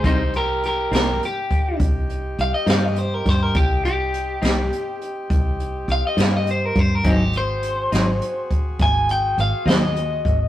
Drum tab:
HH |xxxxxxxxxxxx|xxxxxxxxxxxx|xxxxxxxxxxxx|
SD |---o-----o-o|---o-----o--|---o--o--o--|
BD |o----oo----o|o-----o----o|o----oo----o|